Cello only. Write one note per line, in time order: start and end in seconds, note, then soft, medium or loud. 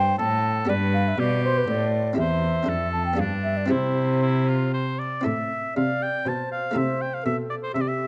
0.00 0.19 G2 medium
0.21 0.69 A2 medium
0.70 1.18 G2 medium
1.19 1.67 B2 medium
1.69 2.17 A2 medium
2.19 2.65 E2 medium
2.68 3.21 F2 medium
3.19 3.73 G2 medium
3.72 5.05 C3 medium
5.26 5.73 A2 medium
5.77 6.23 C3 medium
6.25 6.72 B2 medium
6.75 7.21 C3 medium
7.26 7.72 B2 medium
7.75 8.07 C3 medium